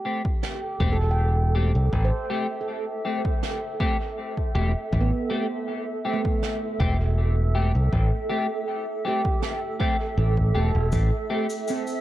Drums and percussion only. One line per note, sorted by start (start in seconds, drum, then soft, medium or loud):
0.25 kick medium
0.43 snare medium
0.80 kick medium
1.93 kick loud
3.25 kick loud
3.43 snare medium
3.80 kick loud
4.37 kick medium
4.93 kick loud
6.25 kick loud
6.43 snare medium
6.80 kick loud
7.93 kick loud
9.25 kick loud
9.42 snare medium
9.80 kick loud
10.37 kick medium
10.92 kick loud
10.92 cabasa medium
11.50 cabasa soft
11.68 cabasa medium
11.87 cabasa soft